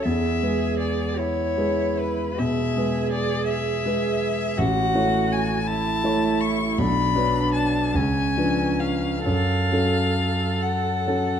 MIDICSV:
0, 0, Header, 1, 4, 480
1, 0, Start_track
1, 0, Tempo, 741656
1, 34, Time_signature, 12, 3, 24, 8
1, 515, Tempo, 796813
1, 1475, Tempo, 733496
1, 4355, Tempo, 769231
1, 4835, Tempo, 813008
1, 5315, Tempo, 898204
1, 6931, End_track
2, 0, Start_track
2, 0, Title_t, "Violin"
2, 0, Program_c, 0, 40
2, 18, Note_on_c, 0, 76, 55
2, 506, Note_off_c, 0, 76, 0
2, 514, Note_on_c, 0, 74, 49
2, 742, Note_on_c, 0, 73, 59
2, 751, Note_off_c, 0, 74, 0
2, 1234, Note_on_c, 0, 71, 49
2, 1243, Note_off_c, 0, 73, 0
2, 1473, Note_on_c, 0, 76, 58
2, 1483, Note_off_c, 0, 71, 0
2, 1948, Note_off_c, 0, 76, 0
2, 1952, Note_on_c, 0, 74, 59
2, 2189, Note_off_c, 0, 74, 0
2, 2192, Note_on_c, 0, 76, 66
2, 2911, Note_on_c, 0, 78, 69
2, 2921, Note_off_c, 0, 76, 0
2, 3394, Note_on_c, 0, 80, 58
2, 3404, Note_off_c, 0, 78, 0
2, 3625, Note_on_c, 0, 81, 73
2, 3635, Note_off_c, 0, 80, 0
2, 4105, Note_on_c, 0, 85, 65
2, 4115, Note_off_c, 0, 81, 0
2, 4351, Note_on_c, 0, 83, 71
2, 4361, Note_off_c, 0, 85, 0
2, 4820, Note_off_c, 0, 83, 0
2, 4824, Note_on_c, 0, 81, 57
2, 5070, Note_on_c, 0, 80, 63
2, 5079, Note_off_c, 0, 81, 0
2, 5545, Note_on_c, 0, 77, 53
2, 5553, Note_off_c, 0, 80, 0
2, 5781, Note_off_c, 0, 77, 0
2, 5784, Note_on_c, 0, 77, 70
2, 6518, Note_on_c, 0, 78, 50
2, 6526, Note_off_c, 0, 77, 0
2, 6931, Note_off_c, 0, 78, 0
2, 6931, End_track
3, 0, Start_track
3, 0, Title_t, "Cello"
3, 0, Program_c, 1, 42
3, 35, Note_on_c, 1, 68, 44
3, 752, Note_on_c, 1, 64, 46
3, 761, Note_off_c, 1, 68, 0
3, 1480, Note_on_c, 1, 68, 52
3, 1489, Note_off_c, 1, 64, 0
3, 2904, Note_on_c, 1, 66, 59
3, 2914, Note_off_c, 1, 68, 0
3, 3628, Note_off_c, 1, 66, 0
3, 3636, Note_on_c, 1, 64, 51
3, 4360, Note_on_c, 1, 62, 51
3, 4369, Note_off_c, 1, 64, 0
3, 5065, Note_on_c, 1, 61, 50
3, 5074, Note_off_c, 1, 62, 0
3, 5775, Note_off_c, 1, 61, 0
3, 5778, Note_on_c, 1, 69, 46
3, 6931, Note_off_c, 1, 69, 0
3, 6931, End_track
4, 0, Start_track
4, 0, Title_t, "Grand piano"
4, 0, Program_c, 2, 0
4, 0, Control_c, 2, 64, 127
4, 34, Note_on_c, 2, 40, 39
4, 46, Control_c, 2, 64, 0
4, 140, Control_c, 2, 64, 127
4, 266, Note_off_c, 2, 40, 0
4, 275, Note_on_c, 2, 56, 27
4, 276, Note_on_c, 2, 68, 26
4, 278, Note_on_c, 2, 71, 31
4, 960, Note_off_c, 2, 56, 0
4, 961, Note_off_c, 2, 68, 0
4, 962, Note_off_c, 2, 71, 0
4, 982, Note_on_c, 2, 56, 29
4, 984, Note_on_c, 2, 71, 32
4, 986, Note_on_c, 2, 68, 32
4, 1449, Note_off_c, 2, 56, 0
4, 1451, Note_off_c, 2, 68, 0
4, 1451, Note_off_c, 2, 71, 0
4, 1475, Note_on_c, 2, 47, 39
4, 1712, Note_off_c, 2, 47, 0
4, 1720, Note_on_c, 2, 56, 33
4, 1724, Note_on_c, 2, 68, 34
4, 1728, Note_on_c, 2, 71, 37
4, 2407, Note_off_c, 2, 56, 0
4, 2408, Note_off_c, 2, 68, 0
4, 2410, Note_off_c, 2, 71, 0
4, 2434, Note_on_c, 2, 56, 31
4, 2436, Note_on_c, 2, 68, 34
4, 2440, Note_on_c, 2, 71, 37
4, 2887, Note_off_c, 2, 56, 0
4, 2888, Note_off_c, 2, 68, 0
4, 2890, Note_off_c, 2, 71, 0
4, 2909, Note_on_c, 2, 33, 47
4, 2924, Control_c, 2, 64, 0
4, 3030, Control_c, 2, 64, 127
4, 3145, Note_off_c, 2, 33, 0
4, 3150, Note_on_c, 2, 57, 33
4, 3153, Note_on_c, 2, 64, 36
4, 3155, Note_on_c, 2, 73, 39
4, 3842, Note_off_c, 2, 57, 0
4, 3844, Note_off_c, 2, 64, 0
4, 3845, Note_off_c, 2, 73, 0
4, 3863, Note_on_c, 2, 57, 36
4, 3866, Note_on_c, 2, 64, 38
4, 3870, Note_on_c, 2, 73, 40
4, 4324, Note_off_c, 2, 57, 0
4, 4325, Note_off_c, 2, 64, 0
4, 4327, Note_off_c, 2, 73, 0
4, 4350, Note_on_c, 2, 35, 46
4, 4364, Control_c, 2, 64, 0
4, 4477, Control_c, 2, 64, 127
4, 4582, Note_off_c, 2, 35, 0
4, 4583, Note_on_c, 2, 54, 34
4, 4583, Note_on_c, 2, 62, 38
4, 4590, Note_on_c, 2, 71, 42
4, 5042, Note_off_c, 2, 54, 0
4, 5042, Note_off_c, 2, 62, 0
4, 5045, Note_off_c, 2, 71, 0
4, 5061, Note_on_c, 2, 37, 44
4, 5081, Control_c, 2, 64, 0
4, 5194, Control_c, 2, 64, 127
4, 5302, Note_off_c, 2, 37, 0
4, 5315, Note_on_c, 2, 53, 31
4, 5317, Note_on_c, 2, 62, 31
4, 5319, Note_on_c, 2, 71, 34
4, 5764, Note_off_c, 2, 53, 0
4, 5765, Note_off_c, 2, 62, 0
4, 5766, Note_off_c, 2, 71, 0
4, 5787, Note_on_c, 2, 42, 41
4, 5796, Control_c, 2, 64, 0
4, 5906, Control_c, 2, 64, 127
4, 6027, Note_off_c, 2, 42, 0
4, 6034, Note_on_c, 2, 61, 31
4, 6036, Note_on_c, 2, 54, 29
4, 6040, Note_on_c, 2, 69, 31
4, 6737, Note_off_c, 2, 61, 0
4, 6738, Note_off_c, 2, 54, 0
4, 6740, Note_off_c, 2, 69, 0
4, 6757, Note_on_c, 2, 54, 29
4, 6757, Note_on_c, 2, 61, 27
4, 6761, Note_on_c, 2, 69, 29
4, 6931, Note_off_c, 2, 54, 0
4, 6931, Note_off_c, 2, 61, 0
4, 6931, Note_off_c, 2, 69, 0
4, 6931, End_track
0, 0, End_of_file